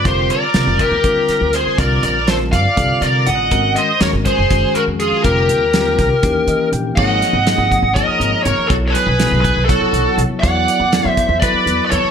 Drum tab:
CC |-------|-------|-------|-------|
HH |xxxxxxx|xxxxxxx|xxxxxxx|xxxxxxx|
SD |--o--o-|--o----|--o-o--|--oo---|
BD |o--oo--|o--oo--|o--oo--|o--oo--|

CC |x------|-------|-------|
HH |-xxxxxx|xxxxxxx|xxxxxxx|
SD |-oo----|-oo----|--o----|
BD |o--oo--|o--oo--|o--oo--|